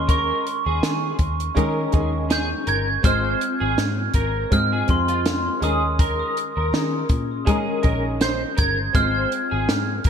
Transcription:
0.00 0.31 D#2 medium
0.00 1.55 D#3 soft
0.00 1.56 G#3 soft
0.00 1.07 C#4 medium
0.00 1.56 C#4 medium
0.00 1.08 G#4 medium
0.00 1.57 G#4 medium
0.00 1.08 A#4 medium
0.00 1.56 A#4 medium
0.00 1.08 D#5 medium
0.00 1.58 D#5 medium
0.08 0.44 A#4 loud
0.08 2.38 C#6 loud
0.08 kick medium
0.08 closed hi-hat medium
0.47 closed hi-hat medium
0.66 0.80 D#2 medium
0.66 1.16 G#4 medium
0.82 1.12 D#3 medium
0.82 snare loud
0.82 closed hi-hat medium
1.19 1.49 D#2 medium
1.19 kick medium
1.19 closed hi-hat medium
1.40 closed hi-hat medium
1.55 3.07 D#3 medium
1.55 1.86 D#3 loud
1.55 3.02 G#3 medium
1.55 1.90 C#4 medium
1.55 3.03 C#4 loud
1.55 1.90 G#4 medium
1.55 3.04 G#4 loud
1.55 1.90 A#4 medium
1.55 1.93 A#4 medium
1.55 3.05 A#4 loud
1.55 1.91 D#5 loud
1.55 3.05 D#5 medium
1.55 kick medium
1.55 closed hi-hat medium
1.92 2.53 D#2 medium
1.92 2.95 C#4 medium
1.92 2.95 G#4 medium
1.92 2.12 G#4 medium
1.92 2.95 A#4 medium
1.92 2.96 D#5 medium
1.92 kick medium
1.92 closed hi-hat soft
2.30 2.49 G#4 medium
2.30 2.69 G6 medium
2.30 snare loud
2.30 closed hi-hat medium
2.67 2.97 G1 medium
2.67 2.86 A#4 medium
2.67 2.85 G#6 medium
2.67 closed hi-hat medium
3.02 3.34 G#1 loud
3.02 4.51 G#3 medium
3.02 4.40 C4 medium
3.02 4.51 C4 medium
3.02 4.40 F4 medium
3.02 4.51 F4 medium
3.02 4.40 G#4 medium
3.02 3.39 C5 medium
3.02 4.52 C5 medium
3.02 4.41 D#5 medium
3.02 4.53 D#5 medium
3.02 4.52 F6 loud
3.02 kick loud
3.02 closed hi-hat medium
3.41 closed hi-hat medium
3.60 3.75 G#1 medium
3.60 3.77 G#4 medium
3.78 4.08 G#2 medium
3.78 snare loud
3.78 closed hi-hat medium
4.14 4.44 G#1 medium
4.14 4.50 A#4 medium
4.14 kick medium
4.14 closed hi-hat medium
4.50 4.81 G#2 loud
4.50 5.63 G#3 medium
4.50 4.85 C4 medium
4.50 5.63 C4 medium
4.50 4.86 F4 medium
4.50 5.62 F4 medium
4.50 4.86 G#4 medium
4.50 5.62 C5 medium
4.50 4.86 D#5 medium
4.50 5.62 D#5 medium
4.50 4.90 F6 medium
4.50 kick medium
4.50 closed hi-hat medium
4.73 4.88 G#4 medium
4.87 5.48 F2 medium
4.87 5.62 C4 medium
4.87 5.62 F4 medium
4.87 5.60 G#4 medium
4.87 5.61 D#5 medium
4.87 5.66 C6 medium
4.87 kick medium
4.87 closed hi-hat medium
5.08 5.25 F4 medium
5.08 closed hi-hat soft
5.26 snare loud
5.26 closed hi-hat medium
5.61 6.21 D#2 medium
5.61 6.75 D#3 medium
5.61 6.77 G#3 medium
5.61 6.98 C#4 medium
5.61 6.71 C#4 medium
5.61 6.98 G#4 medium
5.61 6.73 G#4 medium
5.61 5.82 G#4 medium
5.61 6.99 A#4 medium
5.61 6.73 A#4 medium
5.61 6.74 D#5 medium
5.61 6.99 D#5 medium
5.61 6.33 D#6 medium
5.61 closed hi-hat medium
5.99 6.35 A#4 loud
5.99 kick loud
5.99 closed hi-hat medium
6.37 closed hi-hat medium
6.57 6.70 D#2 medium
6.57 7.07 A#4 medium
6.72 7.03 D#3 medium
6.72 7.46 C#4 medium
6.72 7.48 G#4 medium
6.72 7.47 A#4 medium
6.72 7.49 D#5 medium
6.72 snare loud
6.72 closed hi-hat medium
7.09 7.69 A#2 medium
7.09 kick medium
7.09 closed hi-hat medium
7.45 8.98 D#3 medium
7.45 8.93 G#3 loud
7.45 7.80 C#4 medium
7.45 8.94 C#4 medium
7.45 7.82 G#4 medium
7.45 7.81 G#4 medium
7.45 8.95 G#4 medium
7.45 7.81 A#4 medium
7.45 8.96 A#4 medium
7.45 7.82 D#5 loud
7.45 kick medium
7.45 closed hi-hat medium
7.49 8.97 D#5 loud
7.82 8.43 A#1 medium
7.82 8.86 C#4 medium
7.82 8.86 G#4 medium
7.82 8.03 A#4 medium
7.82 8.86 A#4 medium
7.82 8.87 D#5 medium
7.82 kick medium
7.82 closed hi-hat medium
8.21 8.40 C5 medium
8.21 8.60 G6 medium
8.21 snare loud
8.21 closed hi-hat medium
8.57 8.88 G1 medium
8.57 8.77 A#4 medium
8.57 8.96 G#6 loud
8.57 kick loud
8.57 closed hi-hat medium
8.93 9.24 G#1 loud
8.93 10.10 G#3 medium
8.93 10.10 C4 medium
8.93 10.10 F4 medium
8.93 10.10 G#4 medium
8.93 9.30 C5 medium
8.93 10.10 C5 medium
8.93 10.10 D#5 medium
8.93 10.10 F6 loud
8.93 kick loud
8.93 closed hi-hat medium
8.97 10.10 D#5 medium
9.32 closed hi-hat medium
9.51 9.66 G#1 medium
9.51 9.67 G#4 medium
9.69 9.99 G#2 medium
9.69 snare loud
9.69 closed hi-hat medium
10.04 10.10 G#1 medium
10.04 kick medium
10.04 closed hi-hat medium

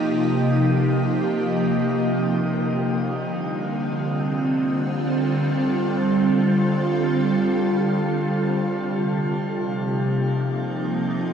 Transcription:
0.00 2.47 C3 medium
0.00 2.48 F3 medium
0.00 2.48 A#3 medium
0.00 2.47 D#4 medium
0.00 4.65 G4 medium
2.47 8.79 D3 medium
2.76 8.78 G3 medium
3.10 9.85 C4 medium
3.77 11.07 F4 medium
4.20 11.31 A4 medium
8.77 11.33 C3 medium
9.11 11.33 F3 medium
9.34 11.33 D#4 medium
9.42 11.33 A#3 medium
10.47 11.33 G4 medium

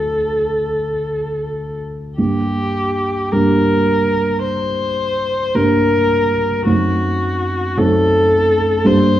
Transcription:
0.00 2.14 D2 soft
0.00 2.14 F#3 soft
0.00 2.14 A3 soft
0.00 2.14 D4 soft
0.00 1.79 A4 soft
2.18 3.29 G2 soft
2.18 3.29 G3 soft
2.18 3.29 A#3 soft
2.18 3.29 D4 soft
2.18 3.34 G4 medium
3.33 5.50 G2 soft
3.33 5.49 G3 soft
3.33 5.49 A#3 soft
3.33 5.49 D4 soft
3.33 4.43 A#4 medium
4.43 5.57 C5 medium
5.55 6.63 G2 soft
5.55 6.63 G3 soft
5.55 6.63 A#3 soft
5.55 6.63 D4 soft
5.55 6.66 A#4 medium
6.66 7.73 F#2 soft
6.66 7.73 A3 soft
6.66 7.74 C4 soft
6.66 7.74 D#4 soft
6.66 7.79 F#4 medium
7.77 8.82 F#2 soft
7.77 8.81 A3 soft
7.77 8.82 C4 soft
7.77 8.81 D#4 soft
7.77 8.88 A4 medium
8.85 9.20 G2 soft
8.85 9.20 G3 soft
8.85 9.20 A#3 soft
8.85 9.20 D4 soft
8.85 9.20 C5 medium

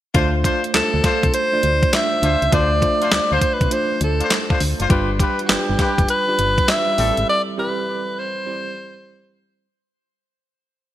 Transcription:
0.14 0.49 D2 loud
0.14 0.54 A3 medium
0.14 0.33 D4 medium
0.14 0.54 D4 medium
0.14 0.33 F4 medium
0.14 0.54 F4 medium
0.14 0.33 C5 loud
0.14 0.54 C5 loud
0.14 kick loud
0.14 closed hi-hat medium
0.44 0.63 D4 medium
0.44 0.63 F4 medium
0.44 0.63 C5 medium
0.44 kick medium
0.44 closed hi-hat medium
0.64 closed hi-hat soft
0.74 0.82 D2 soft
0.74 1.24 A3 medium
0.74 1.24 D4 medium
0.74 1.25 F4 medium
0.74 1.30 A4 medium
0.74 1.25 C5 medium
0.74 snare loud
0.74 clap medium
0.74 closed hi-hat medium
0.94 1.01 D2 medium
1.03 1.22 D4 medium
1.03 1.22 F4 medium
1.03 1.23 C5 medium
1.03 kick medium
1.03 snare medium
1.03 closed hi-hat medium
1.23 1.31 C2 medium
1.23 kick medium
1.23 closed hi-hat medium
1.34 1.95 C5 loud
1.34 closed hi-hat medium
1.52 1.80 A3 medium
1.52 1.80 D4 medium
1.52 1.80 F4 medium
1.52 1.80 D5 medium
1.63 1.84 D2 medium
1.63 closed hi-hat medium
1.83 kick medium
1.83 closed hi-hat medium
1.93 2.32 A3 medium
1.93 2.32 D4 medium
1.93 2.32 F4 medium
1.93 2.33 C5 medium
1.93 2.55 E5 loud
1.93 snare loud
1.93 clap medium
1.93 closed hi-hat medium
2.22 2.36 D2 loud
2.22 2.41 D4 medium
2.22 2.41 F4 medium
2.22 2.41 C5 medium
2.22 closed hi-hat medium
2.42 2.49 C#2 medium
2.42 closed hi-hat medium
2.52 2.87 D2 loud
2.52 2.74 A3 medium
2.52 2.71 D4 medium
2.52 2.74 D4 medium
2.52 2.71 F4 medium
2.52 2.75 F4 medium
2.52 2.71 C5 loud
2.52 2.75 C5 medium
2.52 3.12 D5 loud
2.52 kick loud
2.52 closed hi-hat medium
2.81 3.38 A3 medium
2.81 3.38 D4 medium
2.81 3.39 F4 medium
2.81 3.39 C5 medium
2.81 kick medium
2.81 closed hi-hat medium
3.01 3.11 D4 medium
3.01 3.11 F4 medium
3.01 3.11 C5 medium
3.01 closed hi-hat soft
3.12 3.20 D2 soft
3.12 3.35 D5 medium
3.12 snare loud
3.12 clap medium
3.12 closed hi-hat medium
3.31 3.39 D2 medium
3.31 3.41 D4 medium
3.31 3.41 F4 medium
3.31 3.41 C5 medium
3.31 3.55 C5 medium
3.41 kick medium
3.41 closed hi-hat medium
3.53 3.74 B4 medium
3.61 3.68 C2 medium
3.61 kick medium
3.61 closed hi-hat soft
3.70 4.49 A3 medium
3.70 4.49 D4 medium
3.70 4.50 F4 medium
3.70 4.50 C5 medium
3.70 4.02 C5 loud
3.70 closed hi-hat medium
4.01 4.22 D2 medium
4.01 4.58 A4 medium
4.01 closed hi-hat medium
4.20 4.30 D4 medium
4.20 4.30 F4 medium
4.20 4.30 C5 medium
4.20 closed hi-hat medium
4.30 snare medium
4.30 clap medium
4.30 closed hi-hat medium
4.50 4.60 D4 medium
4.50 4.60 F4 medium
4.50 4.60 C5 medium
4.50 kick loud
4.60 4.74 D2 medium
4.60 open hi-hat medium
4.79 4.87 F#1 medium
4.79 4.89 D4 medium
4.79 4.88 F4 medium
4.79 4.90 C5 medium
4.79 closed hi-hat medium
4.89 5.25 G1 loud
4.89 5.29 G3 medium
4.89 5.29 D4 medium
4.89 5.08 F4 medium
4.89 5.29 F4 medium
4.89 5.09 G4 medium
4.89 5.09 B4 loud
4.89 5.30 B4 medium
4.89 kick loud
4.89 closed hi-hat medium
5.19 5.38 F4 medium
5.19 5.38 G4 medium
5.19 5.38 B4 medium
5.19 kick medium
5.19 closed hi-hat medium
5.39 closed hi-hat medium
5.46 6.00 G3 medium
5.46 6.00 D4 medium
5.46 6.00 F4 medium
5.46 5.52 F#4 medium
5.46 snare loud
5.46 closed hi-hat medium
5.50 5.58 G1 soft
5.50 6.09 G4 medium
5.50 6.00 B4 medium
5.50 clap medium
5.70 5.76 G1 medium
5.79 5.97 F4 medium
5.79 5.98 G4 medium
5.79 5.98 B4 medium
5.79 kick medium
5.79 snare medium
5.79 closed hi-hat medium
5.98 6.06 F1 medium
5.98 kick medium
5.98 closed hi-hat medium
6.08 6.72 B4 loud
6.08 closed hi-hat medium
6.28 6.55 G3 medium
6.28 6.55 D4 medium
6.28 6.55 F4 medium
6.28 6.56 G4 medium
6.39 6.60 G1 medium
6.39 closed hi-hat medium
6.58 kick medium
6.58 closed hi-hat soft
6.68 6.97 G3 medium
6.68 6.98 D4 medium
6.68 6.98 F4 medium
6.68 6.98 B4 medium
6.68 7.29 E5 loud
6.68 snare loud
6.68 clap medium
6.68 closed hi-hat medium
6.98 7.12 A1 loud
6.98 7.49 G3 medium
6.98 7.16 C4 medium
6.98 7.49 C4 medium
6.98 7.50 E4 medium
6.98 7.16 G4 medium
6.98 7.17 A4 medium
6.98 7.50 A4 medium
6.98 open hi-hat medium
7.17 7.25 G#1 medium
7.17 closed hi-hat soft
7.29 7.42 D5 loud
7.57 8.14 G3 medium
7.57 8.14 C4 medium
7.57 8.14 E4 medium
7.57 8.15 G4 medium
7.57 8.20 B4 loud
8.19 9.37 C5 loud
8.46 9.25 G3 medium
8.46 9.25 C4 medium
8.46 9.25 E4 medium
8.46 9.25 C5 medium

